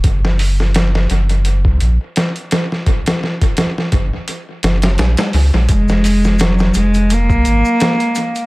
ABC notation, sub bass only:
X:1
M:4/4
L:1/16
Q:"Swing 16ths" 1/4=85
K:Fphr
V:1 name="Sub bass" clef=bass
G,,,6 G,,,3 D,, B,,, z4 z | z6 G,,, z3 G,,,2 B,,, z D,, B,,, | F,,,6 F,,,3 C,, A,,, z4 z |]